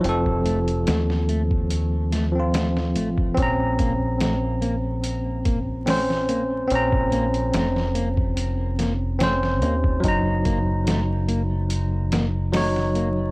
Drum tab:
HH |x-xxx-x-x-x-x-x-|x-x-x-x-x-x-o-x-|x-xxx-x-x-x-x-x-|x-x-x-x-x-x-o-x-|
SD |----oo----o-oo--|----o-------oo--|----oo----o-oo--|----o-----o-oo--|
BD |-o-----o-------o|o-o-------o-----|-o-----o-------o|o-o-------------|